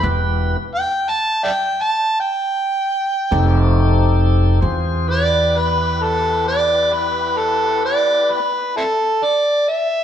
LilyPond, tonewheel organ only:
\new Staff \with { instrumentName = "Tonewheel organ" } { \time 12/8 \key e \minor \tempo 4. = 44 <b e' g' b'>4 r2. r8 <c' ees' g' a'>4. | <c' f' gis' c''>8 <b e' g' b'>1~ <b e' g' b'>4. | }